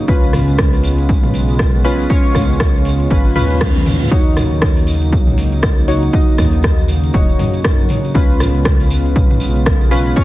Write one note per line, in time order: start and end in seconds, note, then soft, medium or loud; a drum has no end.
0.00 4.08 C#3 medium
0.08 1.11 C#2 loud
0.08 4.08 G#3 medium
0.08 4.08 B3 medium
0.08 1.82 C#4 medium
0.08 1.82 F4 medium
0.08 4.08 F4 medium
0.08 1.82 B4 medium
0.08 kick loud
0.08 closed hi-hat soft
0.08 tambourine medium
0.24 tambourine soft
0.33 cross-stick medium
0.33 mid tom medium
0.33 open hi-hat medium
0.33 tambourine loud
0.48 closed hi-hat medium
0.48 tambourine soft
0.59 kick loud
0.59 cross-stick loud
0.59 closed hi-hat soft
0.59 tambourine soft
0.73 open hi-hat medium
0.73 tambourine soft
0.83 open hi-hat medium
0.83 tambourine medium
0.98 closed hi-hat medium
0.98 tambourine soft
1.09 2.06 B1 medium
1.09 kick loud
1.09 closed hi-hat soft
1.09 tambourine medium
1.23 mid tom medium
1.23 tambourine soft
1.34 open hi-hat medium
1.34 tambourine medium
1.49 closed hi-hat medium
1.49 tambourine soft
1.59 kick loud
1.59 cross-stick loud
1.59 closed hi-hat soft
1.59 tambourine medium
1.75 tambourine soft
1.84 2.07 C#4 medium
1.84 2.07 F4 medium
1.84 2.07 B4 medium
1.84 open hi-hat medium
1.84 tambourine medium
1.99 closed hi-hat medium
1.99 tambourine soft
2.09 3.08 C#4 medium
2.09 3.08 F4 medium
2.09 3.08 C#5 loud
2.09 kick loud
2.09 closed hi-hat soft
2.09 tambourine medium
2.26 tambourine soft
2.35 3.07 C#2 medium
2.35 kick medium
2.35 cross-stick medium
2.35 mid tom medium
2.35 open hi-hat medium
2.35 tambourine medium
2.49 closed hi-hat medium
2.49 tambourine soft
2.60 kick loud
2.60 cross-stick loud
2.60 closed hi-hat soft
2.60 tambourine medium
2.75 tambourine soft
2.85 open hi-hat medium
2.85 tambourine medium
3.00 closed hi-hat medium
3.00 tambourine soft
3.10 3.37 G#1 loud
3.10 3.34 C#4 medium
3.10 3.34 F4 medium
3.10 3.34 B4 medium
3.10 kick loud
3.10 closed hi-hat soft
3.10 tambourine soft
3.10 reverse cymbal medium
3.25 tambourine soft
3.36 4.08 D#2 loud
3.36 4.09 C#4 medium
3.36 4.09 F4 medium
3.36 4.09 B4 loud
3.36 mid tom medium
3.36 open hi-hat medium
3.36 tambourine medium
3.50 closed hi-hat medium
3.50 tambourine soft
3.61 kick loud
3.61 cross-stick loud
3.61 closed hi-hat soft
3.61 high tom medium
3.61 tambourine medium
3.76 high tom medium
3.76 tambourine soft
3.86 mid tom medium
3.86 open hi-hat medium
3.86 tambourine medium
4.01 closed hi-hat medium
4.01 mid tom medium
4.01 tambourine soft
4.11 5.14 D#2 loud
4.11 10.24 C#3 medium
4.11 8.11 F#3 medium
4.11 8.11 A#3 medium
4.11 5.85 D#4 medium
4.11 8.11 D#4 medium
4.11 5.85 F#4 medium
4.11 5.85 C#5 medium
4.11 kick loud
4.11 closed hi-hat soft
4.11 tambourine medium
4.26 tambourine soft
4.37 cross-stick medium
4.37 mid tom medium
4.37 open hi-hat loud
4.37 tambourine medium
4.51 closed hi-hat medium
4.51 tambourine soft
4.62 kick loud
4.62 cross-stick loud
4.62 closed hi-hat soft
4.62 tambourine medium
4.77 open hi-hat medium
4.77 tambourine soft
4.87 open hi-hat medium
4.87 tambourine loud
5.02 closed hi-hat medium
5.02 tambourine soft
5.12 6.09 C#2 medium
5.12 kick loud
5.12 closed hi-hat soft
5.12 tambourine medium
5.27 mid tom medium
5.27 tambourine soft
5.38 open hi-hat loud
5.38 tambourine loud
5.52 closed hi-hat medium
5.52 tambourine soft
5.63 kick loud
5.63 cross-stick loud
5.63 closed hi-hat soft
5.63 tambourine medium
5.78 tambourine soft
5.88 6.11 D#4 medium
5.88 6.11 F#4 medium
5.88 6.11 C#5 medium
5.88 open hi-hat loud
5.88 tambourine medium
6.02 closed hi-hat medium
6.02 tambourine soft
6.13 7.12 D#4 medium
6.13 7.12 F#4 medium
6.13 7.12 D#5 loud
6.13 kick loud
6.13 closed hi-hat soft
6.13 tambourine medium
6.28 tambourine soft
6.38 7.10 D#2 medium
6.38 kick medium
6.38 cross-stick medium
6.38 mid tom medium
6.38 open hi-hat loud
6.38 tambourine loud
6.53 closed hi-hat medium
6.53 tambourine soft
6.63 kick loud
6.63 cross-stick loud
6.63 closed hi-hat soft
6.63 tambourine medium
6.79 tambourine soft
6.88 open hi-hat medium
6.88 tambourine medium
7.04 closed hi-hat medium
7.04 tambourine soft
7.13 7.35 D#1 medium
7.13 8.12 D#4 medium
7.13 8.12 F#4 medium
7.13 8.12 C#5 medium
7.13 kick loud
7.13 closed hi-hat soft
7.13 tambourine medium
7.29 tambourine soft
7.39 7.86 F#2 loud
7.39 mid tom medium
7.39 open hi-hat loud
7.39 tambourine medium
7.54 closed hi-hat medium
7.54 tambourine soft
7.64 kick loud
7.64 cross-stick loud
7.64 closed hi-hat soft
7.64 tambourine medium
7.78 tambourine soft
7.89 mid tom medium
7.89 open hi-hat loud
7.89 tambourine loud
8.05 closed hi-hat medium
8.05 tambourine soft
8.15 9.17 C#2 loud
8.15 10.24 G#3 medium
8.15 10.24 B3 medium
8.15 9.89 C#4 medium
8.15 9.89 F4 medium
8.15 10.24 F4 medium
8.15 9.89 B4 medium
8.15 kick loud
8.15 closed hi-hat soft
8.15 tambourine medium
8.29 tambourine soft
8.40 cross-stick medium
8.40 mid tom medium
8.40 open hi-hat loud
8.40 tambourine loud
8.54 closed hi-hat medium
8.54 tambourine soft
8.65 kick loud
8.65 cross-stick loud
8.65 closed hi-hat soft
8.65 tambourine medium
8.80 open hi-hat medium
8.80 tambourine soft
8.90 open hi-hat medium
8.90 tambourine loud
9.06 closed hi-hat medium
9.06 tambourine soft
9.16 10.13 B1 medium
9.16 kick loud
9.16 closed hi-hat soft
9.16 tambourine medium
9.31 mid tom medium
9.31 tambourine soft
9.40 open hi-hat medium
9.40 tambourine loud
9.56 closed hi-hat medium
9.56 tambourine soft
9.66 kick loud
9.66 cross-stick loud
9.66 closed hi-hat soft
9.66 tambourine medium
9.81 tambourine soft
9.91 10.14 C#4 medium
9.91 10.14 F4 medium
9.91 10.14 B4 medium
9.91 open hi-hat medium
9.91 tambourine loud
10.06 closed hi-hat medium
10.06 tambourine soft
10.16 10.24 C#4 medium
10.16 10.24 F4 medium
10.16 10.24 C#5 loud
10.16 kick loud
10.16 closed hi-hat soft
10.16 tambourine medium